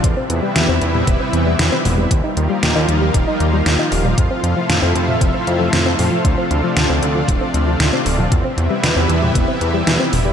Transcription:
0.04 E2 B2 C3 E3 G3 B3 E4, kick, closed hi-hat
0.17 C4
0.30 E2, closed hi-hat
0.43 G3
0.56 E2 B2, snare, closed hi-hat
0.68 E2 C4
0.82 E2, closed hi-hat
0.94 G3, mid tom
1.07 E1 B2, kick, closed hi-hat
1.20 C4
1.33 E2, closed hi-hat
1.46 G3
1.59 E2 B2, snare, closed hi-hat
1.72 C4
1.85 E1, open hi-hat, mid tom
1.98 G3
2.11 D#2 A#2 D#3 F3 G3 A#3 F4, kick, closed hi-hat
2.24 D#4
2.37 D#2, closed hi-hat
2.50 G3
2.63 D#2 A#2, snare, closed hi-hat
2.75 D#2 D#4
2.88 D#2, closed hi-hat
3.01 G3
3.14 D#1 A#2, kick, closed hi-hat
3.27 D#4
3.40 D#2, closed hi-hat
3.53 G3
3.66 D#2 A#2, snare, closed hi-hat
3.79 D#4
3.92 D#1, open hi-hat
4.05 G3, mid tom
4.18 F2 A2 C3 A3 E4, kick, closed hi-hat
4.31 C4
4.43 F2, closed hi-hat
4.56 F3
4.69 F2 A2, snare, closed hi-hat
4.82 F2 C4
4.95 F2, closed hi-hat
5.08 F3, mid tom
5.21 F1 A2, kick, closed hi-hat
5.34 C4
5.47 F2, closed hi-hat
5.60 F3
5.73 F2 A2, snare, closed hi-hat
5.86 C4
5.99 F2, open hi-hat, mid tom
6.12 F3
6.25 D2 A2 D4, kick, closed hi-hat
6.38 C4
6.51 D2, closed hi-hat
6.64 F3
6.76 D2 A2, snare, closed hi-hat
6.89 D2 C4
7.02 D2, closed hi-hat
7.15 F3
7.28 D1 A2, kick, closed hi-hat
7.41 C4
7.54 D2, closed hi-hat
7.67 F3
7.80 D2 A2, snare, closed hi-hat
7.93 C4
8.06 D1, open hi-hat
8.19 F3, mid tom
8.32 E2 B2 E3 G3 B3 E4, kick, closed hi-hat
8.45 C4
8.57 E2, closed hi-hat
8.70 G3
8.83 E2 B2, snare, closed hi-hat
8.96 E2 C4
9.09 E2, closed hi-hat
9.22 G3, mid tom
9.35 E1 B2, kick, closed hi-hat
9.48 C4
9.61 E2, closed hi-hat
9.74 G3
9.87 E2 B2, snare, closed hi-hat
10.00 C4
10.13 E1, open hi-hat, mid tom
10.25 G3

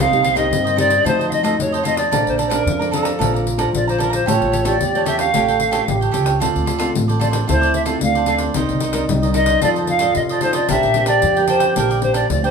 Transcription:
Already playing: C3 D#4 A#4 C5
0.00 C4 D#5 F5
0.11 C2 A#3 D#4 G4, pandeiro
0.22 D#4 A#4 C5 D#5, pandeiro
0.35 A#3 D#4 G4 A#4 C5 D#5, pandeiro
0.51 G2, pandeiro
0.64 A#4 C5 D#5, pandeiro
0.76 A#3 D#4 G4 A#4 C5 D5 D#5, pandeiro
0.88 A#4 C5 D#5, pandeiro
1.04 F2 F3 A3 D#4 F4 F#4 A4 C5 D#5, pandeiro
1.19 A4 C5 D#5, pandeiro
1.29 D#5 F5, pandeiro
1.43 A3 D#4 F4 F#4 A4 C5 D#5, pandeiro
1.58 F2 C3 C#5, pandeiro
1.72 A4 C5 C#5 D#5, pandeiro
1.83 A3 D#4 F4 F#4 A4 C5 D#5, pandeiro
1.96 A4 C5 D5 D#5, pandeiro
2.11 A#1 A#3 D4 A4 C5 D5 F5 A#5, pandeiro
2.27 A#1 C5, pandeiro
2.38 A4 D5 F5 A#5, pandeiro
2.45 C5
2.50 D4 A4 A#4 C5 D5 F5 A#5, pandeiro
2.66 F2 F3, pandeiro
2.79 D4 A4 C5 D5 F5 A#5, pandeiro
2.91 A4 D5 F5 A#5, pandeiro
3.03 D5 F5 A#5, pandeiro
3.19 A#1 A#3 D4 F4 A4 C5 D5 F5 A#5, pandeiro
3.34 D5 F5 A#5, pandeiro
3.47 pandeiro
3.58 D4 A4 C5 D5 F5 A#5, pandeiro
3.73 A#1 F3 D5, pandeiro
3.88 C5 D5 F5 A#5, pandeiro
3.98 D4 A4 A#4 C5 D5 F5 A#5, pandeiro
4.10 C5 D5 F5 A#5, pandeiro
4.26 A1 A3 F4 G4 A4 C#5 G5, pandeiro
4.41 A1, pandeiro
4.52 G4 A4 C#5 G5, pandeiro
4.65 F4 G4 A4 C#5 D5 G5, pandeiro
4.80 E2 G4, pandeiro
4.95 F4 G4 A4 C#5 G5, pandeiro
5.05 G4 A4 C#5 E5 G5, pandeiro
5.17 A4 C#5 F5 G5, pandeiro
5.33 A1 A3 F4 G4 A4 C#5 G5, pandeiro
5.48 A4 C#5 G5, pandeiro
5.60 pandeiro
5.71 F4 G4 A4 C#5 G5, pandeiro
5.87 A1 E3 G4, pandeiro
6.01 A4 C#5 G5, pandeiro
6.11 C#2 F4 G4 A4 C#5 G5, pandeiro
6.24 A4 C#5 G5, pandeiro
6.40 D2 D3 C4 F4 A4 C5 D5, pandeiro
6.56 D2, pandeiro
6.66 F4 A4 C5 D5, pandeiro
6.78 C4 F4 A4 C5 D5, pandeiro
6.95 A1 A3, pandeiro
7.08 C4 F4 A4 C5 D5, pandeiro
7.19 F4 A4 C5 D5, pandeiro
7.31 A4 C5 D5, pandeiro
7.47 D2 D3 C4 E4 F4 A4 C5 D5, pandeiro
7.61 A4 C5 D5, pandeiro
7.74 E5, pandeiro
7.85 C4 F4 A4 C5 D5, pandeiro
8.01 D2 A3 D4 F5, pandeiro
8.15 A4 C5 D5, pandeiro
8.26 C4 F4 A4 C5 D5, pandeiro
8.38 A4 C5 D5, pandeiro
8.54 C2 C4 D#4 A#4 C5 D5 D#5, pandeiro
8.69 C2, pandeiro
8.80 D#4 A#4 C5 D#5, pandeiro
8.93 D#4 A#4 C5 D5 D#5, pandeiro
9.09 C2 G3, pandeiro
9.22 D#4 A#4 C5 D5 D#5, pandeiro
9.34 D#4 A#4 C5 D#5, pandeiro
9.46 A#4 C5 D#5, pandeiro
9.61 F2 F3 D#4 F4 A4 C5 D5 D#5, pandeiro
9.76 A4 C5 D#5, pandeiro
9.87 F5, pandeiro
9.99 D#4 F4 A4 C5 D5 D#5, pandeiro
10.15 F2 C3 D#5, pandeiro
10.29 A4 C5 D5 D#5, pandeiro
10.41 D#4 F4 A4 C5 D5 D#5, pandeiro
10.53 A4 C5 D5 D#5, pandeiro
10.69 A#1 A#3 D4 G4 A#4 C5 D5 E5 G5, pandeiro
10.83 A#1, pandeiro
10.94 D4 G4 A#4 C5 D5 G5, pandeiro
11.06 D4 A#4 D5 G5, pandeiro
11.22 F2 F3, pandeiro
11.36 D4 G4 A#4 C5 D5 G5, pandeiro
11.47 D4 A#4 C5 D5 G5, pandeiro
11.60 A#4 D5 G5, pandeiro
11.76 A#1 A#3 D4 G4 A#4 C5 D5 G5, pandeiro
11.90 A#4 D5 G5, pandeiro
12.01 D4 G4 C5, pandeiro
12.14 D4 A#4 D5 G5, pandeiro
12.29 D2 F3 D5, pandeiro
12.43 D4 G4 A#4 C5 D5 G5, pandeiro

